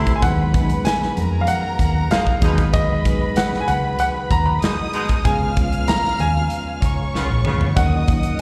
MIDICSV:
0, 0, Header, 1, 9, 480
1, 0, Start_track
1, 0, Tempo, 628272
1, 173, Time_signature, 4, 2, 24, 8
1, 6426, End_track
2, 0, Start_track
2, 0, Title_t, "String section"
2, 0, Program_c, 0, 48
2, 0, Note_on_c, 0, 72, 76
2, 0, Note_on_c, 0, 84, 92
2, 163, Note_off_c, 0, 84, 0
2, 164, Note_off_c, 0, 72, 0
2, 175, Note_on_c, 0, 71, 71
2, 175, Note_on_c, 0, 83, 82
2, 879, Note_off_c, 0, 71, 0
2, 879, Note_off_c, 0, 83, 0
2, 889, Note_on_c, 0, 70, 80
2, 890, Note_on_c, 0, 82, 95
2, 1830, Note_off_c, 0, 70, 0
2, 1831, Note_off_c, 0, 82, 0
2, 1844, Note_on_c, 0, 83, 86
2, 1846, Note_on_c, 0, 71, 78
2, 3497, Note_off_c, 0, 83, 0
2, 3498, Note_off_c, 0, 71, 0
2, 3523, Note_on_c, 0, 87, 94
2, 3525, Note_on_c, 0, 75, 80
2, 3998, Note_off_c, 0, 75, 0
2, 3998, Note_off_c, 0, 87, 0
2, 4005, Note_on_c, 0, 77, 76
2, 4005, Note_on_c, 0, 89, 93
2, 5185, Note_off_c, 0, 77, 0
2, 5185, Note_off_c, 0, 89, 0
2, 5209, Note_on_c, 0, 73, 79
2, 5210, Note_on_c, 0, 85, 82
2, 5918, Note_off_c, 0, 73, 0
2, 5918, Note_off_c, 0, 85, 0
2, 5934, Note_on_c, 0, 87, 82
2, 5935, Note_on_c, 0, 75, 72
2, 6405, Note_off_c, 0, 87, 0
2, 6406, Note_off_c, 0, 75, 0
2, 6426, End_track
3, 0, Start_track
3, 0, Title_t, "Grand piano"
3, 0, Program_c, 1, 0
3, 119, Note_on_c, 1, 80, 70
3, 172, Note_off_c, 1, 80, 0
3, 172, Note_on_c, 1, 78, 90
3, 621, Note_off_c, 1, 78, 0
3, 648, Note_on_c, 1, 80, 89
3, 1079, Note_on_c, 1, 77, 75
3, 1089, Note_off_c, 1, 80, 0
3, 1129, Note_on_c, 1, 78, 90
3, 1132, Note_off_c, 1, 77, 0
3, 1614, Note_on_c, 1, 77, 99
3, 1624, Note_off_c, 1, 78, 0
3, 1947, Note_off_c, 1, 77, 0
3, 2089, Note_on_c, 1, 75, 93
3, 2574, Note_on_c, 1, 78, 88
3, 2584, Note_off_c, 1, 75, 0
3, 2746, Note_off_c, 1, 78, 0
3, 2754, Note_on_c, 1, 80, 78
3, 2809, Note_off_c, 1, 80, 0
3, 2809, Note_on_c, 1, 78, 85
3, 3043, Note_off_c, 1, 78, 0
3, 3054, Note_on_c, 1, 78, 100
3, 3108, Note_off_c, 1, 78, 0
3, 3294, Note_on_c, 1, 82, 112
3, 3404, Note_off_c, 1, 82, 0
3, 3405, Note_on_c, 1, 83, 92
3, 3743, Note_off_c, 1, 83, 0
3, 4009, Note_on_c, 1, 80, 89
3, 4460, Note_off_c, 1, 80, 0
3, 4493, Note_on_c, 1, 82, 100
3, 4739, Note_on_c, 1, 80, 92
3, 4740, Note_off_c, 1, 82, 0
3, 5426, Note_off_c, 1, 80, 0
3, 5932, Note_on_c, 1, 78, 95
3, 6426, Note_off_c, 1, 78, 0
3, 6426, End_track
4, 0, Start_track
4, 0, Title_t, "Reed electric piano"
4, 0, Program_c, 2, 4
4, 0, Control_c, 2, 64, 127
4, 0, Note_on_c, 2, 55, 84
4, 0, Note_on_c, 2, 57, 77
4, 0, Note_on_c, 2, 60, 75
4, 0, Note_on_c, 2, 64, 77
4, 0, Note_on_c, 2, 69, 83
4, 102, Note_off_c, 2, 69, 0
4, 156, Note_on_c, 2, 54, 74
4, 157, Note_on_c, 2, 56, 68
4, 161, Note_on_c, 2, 59, 62
4, 170, Note_on_c, 2, 63, 66
4, 175, Note_on_c, 2, 68, 76
4, 183, Note_off_c, 2, 55, 0
4, 183, Control_c, 2, 64, 0
4, 185, Note_off_c, 2, 57, 0
4, 187, Note_off_c, 2, 60, 0
4, 190, Note_off_c, 2, 64, 0
4, 308, Control_c, 2, 64, 127
4, 338, Note_off_c, 2, 54, 0
4, 339, Note_off_c, 2, 56, 0
4, 341, Note_off_c, 2, 59, 0
4, 345, Note_off_c, 2, 63, 0
4, 348, Note_off_c, 2, 68, 0
4, 395, Note_on_c, 2, 54, 63
4, 399, Note_on_c, 2, 56, 56
4, 403, Note_on_c, 2, 59, 55
4, 407, Note_on_c, 2, 61, 47
4, 416, Note_on_c, 2, 71, 66
4, 459, Note_off_c, 2, 61, 0
4, 460, Note_on_c, 2, 63, 60
4, 1100, Note_off_c, 2, 54, 0
4, 1102, Note_off_c, 2, 56, 0
4, 1104, Note_off_c, 2, 59, 0
4, 1111, Note_off_c, 2, 71, 0
4, 1133, Note_off_c, 2, 63, 0
4, 1840, Note_on_c, 2, 54, 79
4, 1845, Note_on_c, 2, 56, 72
4, 1850, Note_on_c, 2, 59, 66
4, 1853, Note_on_c, 2, 63, 72
4, 1860, Note_on_c, 2, 68, 80
4, 1863, Control_c, 2, 64, 0
4, 1994, Control_c, 2, 64, 127
4, 2229, Note_off_c, 2, 54, 0
4, 2232, Note_off_c, 2, 56, 0
4, 2234, Note_off_c, 2, 59, 0
4, 2236, Note_off_c, 2, 63, 0
4, 2239, Note_off_c, 2, 68, 0
4, 2319, Note_on_c, 2, 54, 69
4, 2323, Note_on_c, 2, 56, 59
4, 2327, Note_on_c, 2, 59, 56
4, 2333, Note_on_c, 2, 63, 59
4, 2338, Note_on_c, 2, 68, 67
4, 3022, Note_off_c, 2, 54, 0
4, 3024, Note_off_c, 2, 56, 0
4, 3026, Note_off_c, 2, 59, 0
4, 3029, Note_off_c, 2, 63, 0
4, 3032, Note_off_c, 2, 68, 0
4, 4005, Note_on_c, 2, 53, 68
4, 4008, Note_on_c, 2, 56, 70
4, 4014, Note_on_c, 2, 59, 70
4, 4021, Control_c, 2, 64, 0
4, 4021, Note_on_c, 2, 61, 62
4, 4025, Note_on_c, 2, 68, 79
4, 4159, Control_c, 2, 64, 127
4, 4183, Note_off_c, 2, 53, 0
4, 4184, Note_off_c, 2, 56, 0
4, 4187, Note_off_c, 2, 59, 0
4, 4190, Note_off_c, 2, 61, 0
4, 4193, Note_off_c, 2, 68, 0
4, 4242, Note_on_c, 2, 53, 59
4, 4247, Note_on_c, 2, 56, 57
4, 4253, Note_on_c, 2, 59, 57
4, 4258, Note_on_c, 2, 61, 60
4, 4262, Note_on_c, 2, 65, 68
4, 4945, Note_off_c, 2, 53, 0
4, 4948, Note_off_c, 2, 56, 0
4, 4951, Note_off_c, 2, 59, 0
4, 4953, Note_off_c, 2, 61, 0
4, 4955, Note_off_c, 2, 65, 0
4, 5929, Note_on_c, 2, 54, 65
4, 5936, Note_on_c, 2, 58, 64
4, 5939, Note_on_c, 2, 61, 67
4, 5944, Control_c, 2, 64, 0
4, 5945, Note_on_c, 2, 63, 62
4, 5950, Note_on_c, 2, 70, 70
4, 6091, Control_c, 2, 64, 127
4, 6106, Note_off_c, 2, 54, 0
4, 6110, Note_off_c, 2, 58, 0
4, 6111, Note_off_c, 2, 61, 0
4, 6114, Note_off_c, 2, 63, 0
4, 6117, Note_off_c, 2, 70, 0
4, 6165, Note_on_c, 2, 54, 57
4, 6169, Note_on_c, 2, 58, 64
4, 6173, Note_on_c, 2, 61, 53
4, 6179, Note_on_c, 2, 63, 58
4, 6186, Note_on_c, 2, 53, 70
4, 6426, Note_off_c, 2, 53, 0
4, 6426, Note_off_c, 2, 54, 0
4, 6426, Note_off_c, 2, 58, 0
4, 6426, Note_off_c, 2, 61, 0
4, 6426, Note_off_c, 2, 63, 0
4, 6426, End_track
5, 0, Start_track
5, 0, Title_t, "Horn section"
5, 0, Program_c, 3, 61
5, 0, Note_on_c, 3, 48, 83
5, 0, Note_on_c, 3, 57, 71
5, 0, Note_on_c, 3, 64, 85
5, 86, Note_off_c, 3, 48, 0
5, 86, Note_off_c, 3, 57, 0
5, 87, Note_off_c, 3, 64, 0
5, 1612, Note_on_c, 3, 56, 72
5, 1613, Note_on_c, 3, 47, 70
5, 1613, Note_on_c, 3, 63, 77
5, 1714, Note_off_c, 3, 47, 0
5, 1714, Note_off_c, 3, 56, 0
5, 1714, Note_off_c, 3, 63, 0
5, 1853, Note_on_c, 3, 63, 91
5, 1855, Note_on_c, 3, 47, 82
5, 1855, Note_on_c, 3, 56, 70
5, 2006, Note_off_c, 3, 47, 0
5, 2006, Note_off_c, 3, 63, 0
5, 2007, Note_off_c, 3, 56, 0
5, 3536, Note_on_c, 3, 47, 64
5, 3536, Note_on_c, 3, 63, 68
5, 3537, Note_on_c, 3, 56, 71
5, 3636, Note_off_c, 3, 47, 0
5, 3636, Note_off_c, 3, 56, 0
5, 3636, Note_off_c, 3, 63, 0
5, 3772, Note_on_c, 3, 47, 75
5, 3772, Note_on_c, 3, 56, 84
5, 3773, Note_on_c, 3, 63, 93
5, 3925, Note_off_c, 3, 47, 0
5, 3925, Note_off_c, 3, 56, 0
5, 3925, Note_off_c, 3, 63, 0
5, 5454, Note_on_c, 3, 49, 68
5, 5454, Note_on_c, 3, 65, 75
5, 5456, Note_on_c, 3, 59, 62
5, 5556, Note_off_c, 3, 49, 0
5, 5556, Note_off_c, 3, 65, 0
5, 5557, Note_off_c, 3, 59, 0
5, 5695, Note_on_c, 3, 49, 81
5, 5695, Note_on_c, 3, 59, 74
5, 5695, Note_on_c, 3, 65, 77
5, 5848, Note_off_c, 3, 49, 0
5, 5848, Note_off_c, 3, 59, 0
5, 5848, Note_off_c, 3, 65, 0
5, 6426, End_track
6, 0, Start_track
6, 0, Title_t, "Tonewheel organ"
6, 0, Program_c, 4, 16
6, 0, Note_on_c, 4, 48, 62
6, 0, Note_on_c, 4, 55, 64
6, 0, Note_on_c, 4, 57, 54
6, 0, Note_on_c, 4, 64, 68
6, 156, Note_on_c, 4, 56, 63
6, 157, Note_on_c, 4, 66, 70
6, 159, Note_on_c, 4, 59, 65
6, 161, Note_on_c, 4, 51, 56
6, 164, Note_off_c, 4, 55, 0
6, 165, Note_off_c, 4, 48, 0
6, 166, Note_off_c, 4, 57, 0
6, 166, Note_off_c, 4, 64, 0
6, 3972, Note_off_c, 4, 56, 0
6, 3973, Note_off_c, 4, 66, 0
6, 3975, Note_off_c, 4, 51, 0
6, 4006, Note_on_c, 4, 49, 64
6, 4006, Note_on_c, 4, 56, 64
6, 4007, Note_on_c, 4, 65, 63
6, 5896, Note_off_c, 4, 59, 0
6, 5912, Note_off_c, 4, 49, 0
6, 5912, Note_off_c, 4, 56, 0
6, 5913, Note_off_c, 4, 65, 0
6, 5935, Note_on_c, 4, 58, 55
6, 5937, Note_on_c, 4, 49, 57
6, 5938, Note_on_c, 4, 51, 65
6, 5938, Note_on_c, 4, 63, 65
6, 6426, Note_off_c, 4, 49, 0
6, 6426, Note_off_c, 4, 51, 0
6, 6426, Note_off_c, 4, 58, 0
6, 6426, Note_off_c, 4, 63, 0
6, 6426, End_track
7, 0, Start_track
7, 0, Title_t, "Fingered electric bass"
7, 0, Program_c, 5, 33
7, 174, Note_on_c, 5, 39, 109
7, 581, Note_off_c, 5, 39, 0
7, 895, Note_on_c, 5, 41, 95
7, 1097, Note_off_c, 5, 41, 0
7, 1372, Note_on_c, 5, 39, 99
7, 1575, Note_off_c, 5, 39, 0
7, 1850, Note_on_c, 5, 39, 115
7, 2461, Note_off_c, 5, 39, 0
7, 2815, Note_on_c, 5, 37, 88
7, 3017, Note_off_c, 5, 37, 0
7, 3291, Note_on_c, 5, 39, 97
7, 3495, Note_off_c, 5, 39, 0
7, 4014, Note_on_c, 5, 37, 102
7, 4421, Note_off_c, 5, 37, 0
7, 4732, Note_on_c, 5, 39, 89
7, 4936, Note_off_c, 5, 39, 0
7, 5213, Note_on_c, 5, 37, 86
7, 5519, Note_off_c, 5, 37, 0
7, 5577, Note_on_c, 5, 34, 87
7, 5678, Note_off_c, 5, 34, 0
7, 5700, Note_on_c, 5, 38, 84
7, 5902, Note_off_c, 5, 38, 0
7, 5935, Note_on_c, 5, 39, 104
7, 6343, Note_off_c, 5, 39, 0
7, 6426, End_track
8, 0, Start_track
8, 0, Title_t, "Muted fingered electric bass strokes"
8, 775, Note_on_c, 9, 29, 46
8, 851, Note_off_c, 9, 29, 0
8, 2692, Note_on_c, 9, 29, 43
8, 2769, Note_off_c, 9, 29, 0
8, 4613, Note_on_c, 9, 29, 49
8, 4689, Note_off_c, 9, 29, 0
8, 6426, End_track
9, 0, Start_track
9, 0, Title_t, "Drums"
9, 50, Note_on_c, 9, 42, 46
9, 52, Note_on_c, 9, 36, 80
9, 126, Note_off_c, 9, 42, 0
9, 128, Note_off_c, 9, 36, 0
9, 172, Note_on_c, 9, 36, 104
9, 174, Note_on_c, 9, 42, 88
9, 248, Note_off_c, 9, 36, 0
9, 250, Note_off_c, 9, 42, 0
9, 414, Note_on_c, 9, 36, 90
9, 414, Note_on_c, 9, 42, 76
9, 490, Note_off_c, 9, 42, 0
9, 491, Note_off_c, 9, 36, 0
9, 531, Note_on_c, 9, 42, 57
9, 607, Note_off_c, 9, 42, 0
9, 649, Note_on_c, 9, 42, 103
9, 662, Note_on_c, 9, 38, 119
9, 726, Note_off_c, 9, 42, 0
9, 739, Note_off_c, 9, 38, 0
9, 781, Note_on_c, 9, 38, 38
9, 858, Note_off_c, 9, 38, 0
9, 893, Note_on_c, 9, 42, 80
9, 970, Note_off_c, 9, 42, 0
9, 1123, Note_on_c, 9, 42, 93
9, 1199, Note_off_c, 9, 42, 0
9, 1368, Note_on_c, 9, 36, 69
9, 1372, Note_on_c, 9, 42, 82
9, 1445, Note_off_c, 9, 36, 0
9, 1448, Note_off_c, 9, 42, 0
9, 1610, Note_on_c, 9, 42, 84
9, 1622, Note_on_c, 9, 38, 114
9, 1687, Note_off_c, 9, 42, 0
9, 1698, Note_off_c, 9, 38, 0
9, 1732, Note_on_c, 9, 36, 78
9, 1808, Note_off_c, 9, 36, 0
9, 1846, Note_on_c, 9, 42, 66
9, 1849, Note_on_c, 9, 36, 94
9, 1922, Note_off_c, 9, 42, 0
9, 1926, Note_off_c, 9, 36, 0
9, 1969, Note_on_c, 9, 42, 47
9, 1971, Note_on_c, 9, 36, 89
9, 2046, Note_off_c, 9, 42, 0
9, 2047, Note_off_c, 9, 36, 0
9, 2088, Note_on_c, 9, 42, 77
9, 2091, Note_on_c, 9, 36, 107
9, 2165, Note_off_c, 9, 42, 0
9, 2167, Note_off_c, 9, 36, 0
9, 2332, Note_on_c, 9, 42, 88
9, 2333, Note_on_c, 9, 36, 84
9, 2409, Note_off_c, 9, 42, 0
9, 2410, Note_off_c, 9, 36, 0
9, 2567, Note_on_c, 9, 42, 106
9, 2580, Note_on_c, 9, 38, 116
9, 2643, Note_off_c, 9, 42, 0
9, 2656, Note_off_c, 9, 38, 0
9, 2702, Note_on_c, 9, 38, 37
9, 2779, Note_off_c, 9, 38, 0
9, 2810, Note_on_c, 9, 42, 80
9, 2886, Note_off_c, 9, 42, 0
9, 3046, Note_on_c, 9, 42, 93
9, 3122, Note_off_c, 9, 42, 0
9, 3290, Note_on_c, 9, 36, 83
9, 3295, Note_on_c, 9, 42, 72
9, 3366, Note_off_c, 9, 36, 0
9, 3372, Note_off_c, 9, 42, 0
9, 3532, Note_on_c, 9, 42, 98
9, 3544, Note_on_c, 9, 38, 111
9, 3609, Note_off_c, 9, 42, 0
9, 3620, Note_off_c, 9, 38, 0
9, 3769, Note_on_c, 9, 42, 62
9, 3846, Note_off_c, 9, 42, 0
9, 3887, Note_on_c, 9, 42, 50
9, 3891, Note_on_c, 9, 36, 76
9, 3963, Note_off_c, 9, 42, 0
9, 3968, Note_off_c, 9, 36, 0
9, 4011, Note_on_c, 9, 42, 86
9, 4012, Note_on_c, 9, 36, 107
9, 4087, Note_off_c, 9, 42, 0
9, 4088, Note_off_c, 9, 36, 0
9, 4251, Note_on_c, 9, 42, 80
9, 4255, Note_on_c, 9, 36, 96
9, 4328, Note_off_c, 9, 42, 0
9, 4331, Note_off_c, 9, 36, 0
9, 4373, Note_on_c, 9, 42, 55
9, 4449, Note_off_c, 9, 42, 0
9, 4490, Note_on_c, 9, 42, 96
9, 4503, Note_on_c, 9, 38, 112
9, 4566, Note_off_c, 9, 42, 0
9, 4579, Note_off_c, 9, 38, 0
9, 4623, Note_on_c, 9, 38, 38
9, 4699, Note_off_c, 9, 38, 0
9, 4729, Note_on_c, 9, 42, 73
9, 4806, Note_off_c, 9, 42, 0
9, 4966, Note_on_c, 9, 42, 84
9, 5042, Note_off_c, 9, 42, 0
9, 5212, Note_on_c, 9, 36, 81
9, 5216, Note_on_c, 9, 42, 74
9, 5288, Note_off_c, 9, 36, 0
9, 5292, Note_off_c, 9, 42, 0
9, 5465, Note_on_c, 9, 38, 57
9, 5541, Note_off_c, 9, 38, 0
9, 5690, Note_on_c, 9, 45, 86
9, 5766, Note_off_c, 9, 45, 0
9, 5813, Note_on_c, 9, 43, 85
9, 5889, Note_off_c, 9, 43, 0
9, 5933, Note_on_c, 9, 42, 92
9, 5934, Note_on_c, 9, 36, 111
9, 6010, Note_off_c, 9, 36, 0
9, 6010, Note_off_c, 9, 42, 0
9, 6170, Note_on_c, 9, 42, 80
9, 6176, Note_on_c, 9, 36, 95
9, 6247, Note_off_c, 9, 42, 0
9, 6252, Note_off_c, 9, 36, 0
9, 6288, Note_on_c, 9, 42, 61
9, 6365, Note_off_c, 9, 42, 0
9, 6426, End_track
0, 0, End_of_file